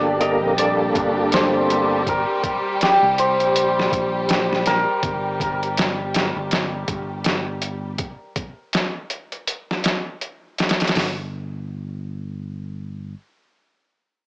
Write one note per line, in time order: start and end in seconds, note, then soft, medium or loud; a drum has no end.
0.00 0.43 G1 loud
0.00 0.58 G3 medium
0.00 8.01 G3 medium
0.00 0.16 A#3 loud
0.00 0.43 C4 medium
0.00 0.17 D4 medium
0.00 0.95 D4 loud
0.00 0.17 G4 medium
0.00 8.01 G4 medium
0.00 0.18 A4 loud
0.00 0.27 D5 loud
0.05 0.40 G4 medium
0.20 0.54 D3 medium
0.20 0.54 A#3 loud
0.20 0.54 G4 medium
0.20 0.55 A#4 loud
0.20 0.65 D#5 loud
0.20 closed hi-hat medium
0.43 0.92 A#1 medium
0.43 0.51 C4 medium
0.56 0.70 G3 medium
0.56 2.01 A#3 loud
0.56 2.02 D4 medium
0.56 2.03 G4 medium
0.56 2.03 A4 loud
0.56 3.05 D5 loud
0.56 closed hi-hat medium
0.95 2.24 G1 loud
0.95 1.15 D4 medium
0.95 kick loud
0.95 closed hi-hat medium
1.17 1.52 G4 medium
1.32 3.19 C5 loud
1.32 snare loud
1.32 closed hi-hat medium
1.55 1.63 C4 medium
1.70 1.82 G3 medium
1.70 closed hi-hat medium
2.07 4.67 A#4 medium
2.07 kick loud
2.07 closed hi-hat medium
2.44 kick medium
2.44 closed hi-hat medium
2.81 2.93 G4 medium
2.81 snare loud
2.81 closed hi-hat medium
3.03 3.40 C2 medium
3.18 5.83 C5 medium
3.18 closed hi-hat medium
3.40 3.89 A#1 medium
3.40 closed hi-hat soft
3.56 closed hi-hat medium
3.80 snare medium
3.92 4.84 A#1 medium
3.92 kick loud
3.92 closed hi-hat medium
4.29 snare loud
4.29 closed hi-hat medium
4.53 snare soft
4.66 7.50 A#4 loud
4.66 snare medium
4.66 closed hi-hat medium
5.03 6.32 G1 loud
5.03 kick loud
5.03 closed hi-hat medium
5.40 kick loud
5.40 closed hi-hat medium
5.63 closed hi-hat soft
5.77 snare loud
5.77 closed hi-hat medium
6.14 snare loud
6.14 closed hi-hat medium
6.36 6.85 G1 medium
6.51 snare loud
6.51 closed hi-hat medium
6.88 7.96 G1 loud
6.88 kick loud
6.88 closed hi-hat medium
7.24 snare loud
7.24 closed hi-hat medium
7.62 closed hi-hat medium
7.98 kick loud
7.98 closed hi-hat medium
8.36 kick loud
8.36 closed hi-hat medium
8.73 snare loud
8.73 closed hi-hat medium
9.10 closed hi-hat medium
9.32 closed hi-hat soft
9.47 closed hi-hat medium
9.71 snare soft
9.84 snare loud
9.84 closed hi-hat medium
10.21 closed hi-hat medium
10.58 snare medium
10.58 closed hi-hat medium
10.69 snare medium
10.69 closed hi-hat medium
10.80 snare medium
10.80 closed hi-hat medium
10.87 snare medium
10.87 closed hi-hat medium
10.95 13.13 G1 medium
10.95 snare loud
10.95 open hi-hat medium